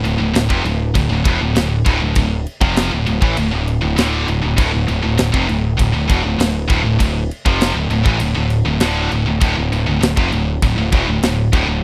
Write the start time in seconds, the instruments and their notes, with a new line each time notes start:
0.04 picked electric bass D1, distorted electric guitar D2 A2, crash
0.19 picked electric bass D1, distorted electric guitar D2 A2
0.34 picked electric bass D1, distorted electric guitar D2 A2, snare, crash
0.50 picked electric bass F1, distorted electric guitar F2 C3, kick
0.64 picked electric bass D1, distorted electric guitar D2 A2, crash
0.95 picked electric bass D1, distorted electric guitar D2 A2, kick, crash
1.10 picked electric bass D1, distorted electric guitar D2 A2
1.25 picked electric bass E1, distorted electric guitar E2 B2, kick, crash
1.29 distorted electric guitar B2
1.41 picked electric bass D1, distorted electric guitar D2 A2
1.56 picked electric bass D1, distorted electric guitar D2 A2, snare, crash
1.86 picked electric bass D1, distorted electric guitar D2 A2, kick, crash
2.01 picked electric bass D1, distorted electric guitar D2 A2
2.15 picked electric bass D1, distorted electric guitar D2 A2, kick, crash
2.47 crash
2.61 picked electric bass F1, distorted electric guitar F2 C3 F3, kick
2.76 snare, crash
2.91 picked electric bass D1, distorted electric guitar D2 A2
3.06 picked electric bass D1, distorted electric guitar D2 A2, crash
3.21 picked electric bass A1, distorted electric guitar A2 E3, kick
3.37 picked electric bass D1, distorted electric guitar D2 A2, crash
3.53 picked electric bass D1, distorted electric guitar D2 A2
3.68 crash
3.82 picked electric bass D1, distorted electric guitar D2 A2
3.96 picked electric bass D1, distorted electric guitar D2 A2 D3, snare, crash
4.28 picked electric bass D1, distorted electric guitar D2 A2, crash
4.42 picked electric bass D1, distorted electric guitar D2 A2
4.56 picked electric bass D1, distorted electric guitar D2 A2, kick, crash
4.72 picked electric bass D1, distorted electric guitar D2 A2
4.87 picked electric bass D1, distorted electric guitar D2 A2, crash
5.02 picked electric bass D1, distorted electric guitar D2 A2
5.17 picked electric bass D1, distorted electric guitar D2 A2, snare, crash
5.33 picked electric bass F1, distorted electric guitar F2 C3, kick
5.48 picked electric bass D1, distorted electric guitar D2 A2, crash
5.78 picked electric bass D1, distorted electric guitar D2 A2, kick, crash
5.92 picked electric bass D1, distorted electric guitar D2 A2
6.08 picked electric bass E1, distorted electric guitar E2 B2, kick, crash
6.23 picked electric bass D1, distorted electric guitar D2 A2
6.38 picked electric bass D1, distorted electric guitar D2 A2, snare, crash
6.68 picked electric bass D1, distorted electric guitar D2 A2, kick, crash
6.82 picked electric bass D1, distorted electric guitar D2 A2
6.99 picked electric bass D1, distorted electric guitar D2 A2, kick, crash
7.31 crash
7.45 picked electric bass F1, distorted electric guitar F2 C3 F3, kick
7.61 snare, crash
7.75 picked electric bass D1, distorted electric guitar D2 A2
7.89 picked electric bass D1, distorted electric guitar D2 A2, crash
8.05 picked electric bass A1, distorted electric guitar A2 E3, kick
8.19 picked electric bass D1, distorted electric guitar D2 A2, crash
8.35 picked electric bass D1, distorted electric guitar D2 A2
8.50 crash
8.66 picked electric bass D1, distorted electric guitar D2 A2
8.80 picked electric bass D1, distorted electric guitar D2 A2 D3, snare, crash
9.11 picked electric bass D1, distorted electric guitar D2 A2, crash
9.26 picked electric bass D1, distorted electric guitar D2 A2
9.41 picked electric bass D1, distorted electric guitar D2 A2, kick, crash
9.57 picked electric bass D1, distorted electric guitar D2 A2
9.72 picked electric bass D1, distorted electric guitar D2 A2, crash
9.87 picked electric bass D1, distorted electric guitar D2 A2
10.02 picked electric bass D1, distorted electric guitar D2 A2, snare, crash
10.16 picked electric bass F1, distorted electric guitar F2 C3, kick
10.32 picked electric bass D1, distorted electric guitar D2 A2, crash
10.62 picked electric bass D1, distorted electric guitar D2 A2, kick, crash
10.76 picked electric bass D1, distorted electric guitar D2 A2
10.92 picked electric bass E1, distorted electric guitar E2 B2, kick, crash
11.08 picked electric bass D1, distorted electric guitar D2 A2
11.21 picked electric bass D1, distorted electric guitar D2 A2, snare, crash
11.52 picked electric bass D1, distorted electric guitar D2 A2, kick, crash
11.67 picked electric bass D1, distorted electric guitar D2 A2